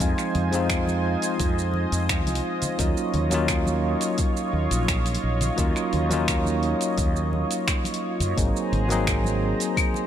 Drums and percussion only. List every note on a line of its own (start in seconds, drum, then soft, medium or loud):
0.00 kick loud
0.00 open hi-hat medium
0.00 shaker medium
0.18 finger snap soft
0.18 shaker soft
0.35 open hi-hat soft
0.35 low conga medium
0.52 open hi-hat soft
0.52 high conga medium
0.52 shaker medium
0.70 finger snap loud
0.70 kick loud
0.70 open hi-hat medium
0.70 shaker medium
0.87 high conga medium
0.87 shaker soft
1.22 open hi-hat soft
1.22 shaker medium
1.40 kick loud
1.40 open hi-hat medium
1.40 shaker medium
1.59 shaker soft
1.74 high conga medium
1.92 open hi-hat soft
1.92 shaker medium
2.09 finger snap loud
2.09 kick loud
2.09 open hi-hat medium
2.09 shaker medium
2.27 open hi-hat soft
2.27 high conga medium
2.27 shaker soft
2.35 open hi-hat medium
2.62 open hi-hat soft
2.62 low conga medium
2.62 shaker medium
2.79 kick loud
2.79 open hi-hat medium
2.79 shaker medium
2.97 shaker soft
3.14 open hi-hat soft
3.14 low conga medium
3.31 open hi-hat soft
3.31 high conga medium
3.31 shaker medium
3.48 finger snap medium
3.48 kick loud
3.48 open hi-hat soft
3.48 shaker medium
3.67 high conga medium
3.67 shaker soft
4.01 open hi-hat soft
4.01 shaker medium
4.18 kick loud
4.18 open hi-hat medium
4.18 shaker medium
4.37 shaker soft
4.71 open hi-hat soft
4.71 shaker medium
4.88 finger snap loud
4.88 kick loud
4.88 open hi-hat soft
4.88 shaker medium
5.06 open hi-hat soft
5.06 shaker soft
5.15 open hi-hat soft
5.41 open hi-hat soft
5.41 low conga medium
5.41 shaker medium
5.58 kick loud
5.58 open hi-hat medium
5.58 shaker medium
5.76 finger snap soft
5.76 shaker soft
5.93 open hi-hat soft
5.93 low conga medium
6.10 open hi-hat soft
6.10 high conga medium
6.10 low conga medium
6.10 shaker medium
6.28 finger snap medium
6.28 kick loud
6.28 open hi-hat soft
6.28 shaker medium
6.46 high conga medium
6.46 shaker soft
6.63 open hi-hat soft
6.81 open hi-hat soft
6.81 shaker medium
6.98 kick loud
6.98 open hi-hat soft
6.98 shaker medium
7.16 shaker soft
7.33 high conga medium
7.51 open hi-hat soft
7.51 shaker medium
7.68 finger snap medium
7.68 kick loud
7.68 open hi-hat medium
7.68 shaker medium
7.85 open hi-hat soft
7.85 high conga medium
7.85 shaker soft
7.94 open hi-hat soft
8.20 open hi-hat soft
8.20 low conga medium
8.20 shaker medium
8.37 kick loud
8.37 open hi-hat medium
8.37 shaker medium
8.56 shaker soft
8.73 open hi-hat soft
8.73 low conga medium
8.89 open hi-hat soft
8.89 high conga medium
8.89 shaker medium
9.07 finger snap medium
9.07 kick loud
9.07 open hi-hat medium
9.07 shaker medium
9.24 high conga medium
9.24 shaker soft
9.60 open hi-hat soft
9.60 shaker medium
9.77 kick loud
9.77 open hi-hat soft
9.77 claves medium
9.77 shaker medium
9.94 muted conga soft
9.94 shaker soft